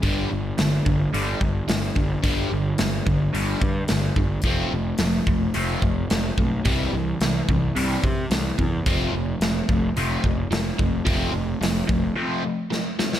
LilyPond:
<<
  \new Staff \with { instrumentName = "Overdriven electric guitar" } { \clef bass \time 4/4 \key f \lydian \tempo 4 = 109 <g, d g>8 <g, d>8 <g, d>8 <g, d>8 <g, d g>8 <g, d>8 <g, d>8 <g, d>8 | <g, d g>8 <g, d>8 <g, d>8 <g, d>8 <g, d g>8 <g, d>8 <g, d>8 <g, d>8 | <f a c'>8 <f a>8 <f a>8 <f a>8 <f a c'>8 <f a>8 <f a>8 <f a>8 | <c e g>8 <c e>8 <c e>8 <c e>8 <c e g>8 <c e>8 <c e>8 <c e>8 |
<f a c'>8 <f a>8 <f a>8 <f a>8 <f a c'>8 <f a>8 <f a>8 <f a>8 | <f a c'>8 <f a>8 <f a>8 <f a>8 <f a c'>8 <f a>8 <f a>8 <f a>8 | }
  \new Staff \with { instrumentName = "Picked electric bass" } { \clef bass \time 4/4 \key f \lydian g,,8 g,,8 g,,8 g,,8 g,,8 g,,8 g,,8 g,,8 | g,,8 g,,8 g,,8 g,,8 g,,8 g,8 g,,8 g,,8 | f,,8 f,,8 f,,8 f,,8 f,,8 f,,8 f,,8 b,,8 | c,8 c,8 c,8 c,8 c,8 c8 c,8 e,8 |
f,,8 f,,8 f,,8 f,,8 f,,8 f,,8 f,,8 f,,8 | f,,8 f,,8 f,,8 f,,8 r2 | }
  \new DrumStaff \with { instrumentName = "Drums" } \drummode { \time 4/4 <hho bd>4 <hho sn>8 bd8 hho8 bd8 <hho sn>8 bd8 | <hho bd>4 <hho sn>8 bd8 hho8 bd8 <hho sn>8 bd8 | <hho bd>4 <hho sn>8 bd8 hho8 bd8 <hho sn>8 bd8 | <hho bd>4 <hho sn>8 bd8 hho8 bd8 <hho sn>8 bd8 |
<hho bd>4 <hho sn>8 bd8 hho8 bd8 <hho sn>8 bd8 | <hho bd>4 <hho sn>8 bd8 r4 sn8 sn16 sn16 | }
>>